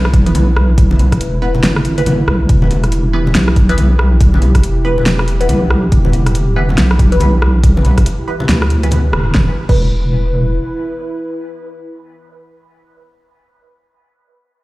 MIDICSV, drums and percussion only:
0, 0, Header, 1, 2, 480
1, 0, Start_track
1, 0, Key_signature, 1, "minor"
1, 0, Tempo, 428571
1, 870, Time_signature, 4, 2, 24, 8
1, 16395, End_track
2, 0, Start_track
2, 0, Title_t, "Drums"
2, 56, Note_on_c, 9, 37, 75
2, 152, Note_on_c, 9, 36, 116
2, 152, Note_on_c, 9, 42, 55
2, 168, Note_off_c, 9, 37, 0
2, 264, Note_off_c, 9, 36, 0
2, 264, Note_off_c, 9, 42, 0
2, 296, Note_on_c, 9, 42, 53
2, 390, Note_on_c, 9, 63, 105
2, 392, Note_off_c, 9, 42, 0
2, 392, Note_on_c, 9, 42, 81
2, 502, Note_off_c, 9, 63, 0
2, 504, Note_off_c, 9, 42, 0
2, 633, Note_on_c, 9, 37, 79
2, 745, Note_off_c, 9, 37, 0
2, 871, Note_on_c, 9, 36, 121
2, 871, Note_on_c, 9, 42, 78
2, 983, Note_off_c, 9, 36, 0
2, 983, Note_off_c, 9, 42, 0
2, 1018, Note_on_c, 9, 63, 93
2, 1113, Note_on_c, 9, 42, 53
2, 1117, Note_on_c, 9, 64, 79
2, 1130, Note_off_c, 9, 63, 0
2, 1225, Note_off_c, 9, 42, 0
2, 1229, Note_off_c, 9, 64, 0
2, 1256, Note_on_c, 9, 36, 64
2, 1258, Note_on_c, 9, 37, 52
2, 1258, Note_on_c, 9, 42, 53
2, 1352, Note_off_c, 9, 42, 0
2, 1352, Note_on_c, 9, 42, 77
2, 1368, Note_off_c, 9, 36, 0
2, 1370, Note_off_c, 9, 37, 0
2, 1464, Note_off_c, 9, 42, 0
2, 1730, Note_on_c, 9, 64, 84
2, 1742, Note_on_c, 9, 63, 69
2, 1831, Note_on_c, 9, 38, 123
2, 1831, Note_on_c, 9, 42, 76
2, 1842, Note_off_c, 9, 64, 0
2, 1854, Note_off_c, 9, 63, 0
2, 1943, Note_off_c, 9, 38, 0
2, 1943, Note_off_c, 9, 42, 0
2, 1975, Note_on_c, 9, 37, 76
2, 2070, Note_on_c, 9, 42, 52
2, 2087, Note_off_c, 9, 37, 0
2, 2182, Note_off_c, 9, 42, 0
2, 2216, Note_on_c, 9, 42, 49
2, 2311, Note_off_c, 9, 42, 0
2, 2311, Note_on_c, 9, 42, 78
2, 2315, Note_on_c, 9, 64, 81
2, 2317, Note_on_c, 9, 63, 101
2, 2423, Note_off_c, 9, 42, 0
2, 2427, Note_off_c, 9, 64, 0
2, 2429, Note_off_c, 9, 63, 0
2, 2551, Note_on_c, 9, 37, 80
2, 2663, Note_off_c, 9, 37, 0
2, 2791, Note_on_c, 9, 36, 119
2, 2791, Note_on_c, 9, 42, 78
2, 2903, Note_off_c, 9, 36, 0
2, 2903, Note_off_c, 9, 42, 0
2, 2935, Note_on_c, 9, 63, 100
2, 3032, Note_on_c, 9, 42, 50
2, 3034, Note_on_c, 9, 64, 72
2, 3047, Note_off_c, 9, 63, 0
2, 3144, Note_off_c, 9, 42, 0
2, 3146, Note_off_c, 9, 64, 0
2, 3176, Note_on_c, 9, 37, 54
2, 3176, Note_on_c, 9, 42, 51
2, 3270, Note_off_c, 9, 42, 0
2, 3270, Note_on_c, 9, 42, 77
2, 3288, Note_off_c, 9, 37, 0
2, 3382, Note_off_c, 9, 42, 0
2, 3660, Note_on_c, 9, 63, 67
2, 3664, Note_on_c, 9, 64, 86
2, 3750, Note_on_c, 9, 38, 121
2, 3750, Note_on_c, 9, 42, 74
2, 3772, Note_off_c, 9, 63, 0
2, 3776, Note_off_c, 9, 64, 0
2, 3862, Note_off_c, 9, 38, 0
2, 3862, Note_off_c, 9, 42, 0
2, 3896, Note_on_c, 9, 37, 80
2, 3990, Note_on_c, 9, 42, 51
2, 3991, Note_on_c, 9, 36, 108
2, 4008, Note_off_c, 9, 37, 0
2, 4102, Note_off_c, 9, 42, 0
2, 4103, Note_off_c, 9, 36, 0
2, 4136, Note_on_c, 9, 42, 49
2, 4230, Note_on_c, 9, 63, 95
2, 4231, Note_off_c, 9, 42, 0
2, 4231, Note_on_c, 9, 42, 76
2, 4342, Note_off_c, 9, 63, 0
2, 4343, Note_off_c, 9, 42, 0
2, 4469, Note_on_c, 9, 37, 83
2, 4581, Note_off_c, 9, 37, 0
2, 4710, Note_on_c, 9, 42, 76
2, 4711, Note_on_c, 9, 36, 112
2, 4822, Note_off_c, 9, 42, 0
2, 4823, Note_off_c, 9, 36, 0
2, 4860, Note_on_c, 9, 63, 94
2, 4948, Note_on_c, 9, 64, 70
2, 4949, Note_on_c, 9, 42, 51
2, 4972, Note_off_c, 9, 63, 0
2, 5060, Note_off_c, 9, 64, 0
2, 5061, Note_off_c, 9, 42, 0
2, 5095, Note_on_c, 9, 37, 55
2, 5095, Note_on_c, 9, 42, 51
2, 5096, Note_on_c, 9, 36, 59
2, 5191, Note_off_c, 9, 42, 0
2, 5191, Note_on_c, 9, 42, 76
2, 5207, Note_off_c, 9, 37, 0
2, 5208, Note_off_c, 9, 36, 0
2, 5303, Note_off_c, 9, 42, 0
2, 5576, Note_on_c, 9, 63, 62
2, 5576, Note_on_c, 9, 64, 84
2, 5669, Note_on_c, 9, 38, 117
2, 5669, Note_on_c, 9, 42, 78
2, 5688, Note_off_c, 9, 63, 0
2, 5688, Note_off_c, 9, 64, 0
2, 5781, Note_off_c, 9, 38, 0
2, 5781, Note_off_c, 9, 42, 0
2, 5815, Note_on_c, 9, 37, 82
2, 5910, Note_on_c, 9, 42, 51
2, 5927, Note_off_c, 9, 37, 0
2, 6022, Note_off_c, 9, 42, 0
2, 6055, Note_on_c, 9, 42, 51
2, 6148, Note_on_c, 9, 64, 84
2, 6150, Note_off_c, 9, 42, 0
2, 6150, Note_on_c, 9, 42, 74
2, 6150, Note_on_c, 9, 63, 90
2, 6260, Note_off_c, 9, 64, 0
2, 6262, Note_off_c, 9, 42, 0
2, 6262, Note_off_c, 9, 63, 0
2, 6389, Note_on_c, 9, 37, 84
2, 6501, Note_off_c, 9, 37, 0
2, 6630, Note_on_c, 9, 36, 114
2, 6631, Note_on_c, 9, 42, 77
2, 6742, Note_off_c, 9, 36, 0
2, 6743, Note_off_c, 9, 42, 0
2, 6773, Note_on_c, 9, 63, 95
2, 6867, Note_on_c, 9, 64, 74
2, 6870, Note_on_c, 9, 42, 51
2, 6885, Note_off_c, 9, 63, 0
2, 6979, Note_off_c, 9, 64, 0
2, 6982, Note_off_c, 9, 42, 0
2, 7016, Note_on_c, 9, 37, 57
2, 7016, Note_on_c, 9, 42, 53
2, 7112, Note_off_c, 9, 42, 0
2, 7112, Note_on_c, 9, 42, 77
2, 7128, Note_off_c, 9, 37, 0
2, 7224, Note_off_c, 9, 42, 0
2, 7494, Note_on_c, 9, 63, 61
2, 7506, Note_on_c, 9, 64, 93
2, 7592, Note_on_c, 9, 38, 114
2, 7592, Note_on_c, 9, 42, 79
2, 7606, Note_off_c, 9, 63, 0
2, 7618, Note_off_c, 9, 64, 0
2, 7704, Note_off_c, 9, 38, 0
2, 7704, Note_off_c, 9, 42, 0
2, 7737, Note_on_c, 9, 37, 83
2, 7831, Note_on_c, 9, 36, 104
2, 7832, Note_on_c, 9, 42, 54
2, 7849, Note_off_c, 9, 37, 0
2, 7943, Note_off_c, 9, 36, 0
2, 7944, Note_off_c, 9, 42, 0
2, 7977, Note_on_c, 9, 42, 51
2, 8063, Note_on_c, 9, 63, 97
2, 8071, Note_off_c, 9, 42, 0
2, 8071, Note_on_c, 9, 42, 78
2, 8175, Note_off_c, 9, 63, 0
2, 8183, Note_off_c, 9, 42, 0
2, 8311, Note_on_c, 9, 37, 89
2, 8423, Note_off_c, 9, 37, 0
2, 8551, Note_on_c, 9, 36, 115
2, 8551, Note_on_c, 9, 42, 82
2, 8663, Note_off_c, 9, 36, 0
2, 8663, Note_off_c, 9, 42, 0
2, 8704, Note_on_c, 9, 63, 98
2, 8789, Note_on_c, 9, 42, 54
2, 8804, Note_on_c, 9, 64, 87
2, 8816, Note_off_c, 9, 63, 0
2, 8901, Note_off_c, 9, 42, 0
2, 8916, Note_off_c, 9, 64, 0
2, 8933, Note_on_c, 9, 37, 56
2, 8933, Note_on_c, 9, 42, 54
2, 8936, Note_on_c, 9, 36, 59
2, 9029, Note_off_c, 9, 42, 0
2, 9029, Note_on_c, 9, 42, 82
2, 9045, Note_off_c, 9, 37, 0
2, 9048, Note_off_c, 9, 36, 0
2, 9141, Note_off_c, 9, 42, 0
2, 9410, Note_on_c, 9, 64, 101
2, 9415, Note_on_c, 9, 63, 68
2, 9508, Note_on_c, 9, 38, 117
2, 9508, Note_on_c, 9, 42, 81
2, 9522, Note_off_c, 9, 64, 0
2, 9527, Note_off_c, 9, 63, 0
2, 9620, Note_off_c, 9, 38, 0
2, 9620, Note_off_c, 9, 42, 0
2, 9654, Note_on_c, 9, 37, 83
2, 9747, Note_on_c, 9, 42, 55
2, 9766, Note_off_c, 9, 37, 0
2, 9859, Note_off_c, 9, 42, 0
2, 9894, Note_on_c, 9, 42, 52
2, 9980, Note_on_c, 9, 63, 97
2, 9987, Note_off_c, 9, 42, 0
2, 9987, Note_on_c, 9, 42, 80
2, 9989, Note_on_c, 9, 64, 84
2, 10092, Note_off_c, 9, 63, 0
2, 10099, Note_off_c, 9, 42, 0
2, 10101, Note_off_c, 9, 64, 0
2, 10227, Note_on_c, 9, 37, 85
2, 10339, Note_off_c, 9, 37, 0
2, 10467, Note_on_c, 9, 38, 88
2, 10470, Note_on_c, 9, 36, 110
2, 10579, Note_off_c, 9, 38, 0
2, 10582, Note_off_c, 9, 36, 0
2, 10854, Note_on_c, 9, 49, 87
2, 10855, Note_on_c, 9, 36, 110
2, 10966, Note_off_c, 9, 49, 0
2, 10967, Note_off_c, 9, 36, 0
2, 16395, End_track
0, 0, End_of_file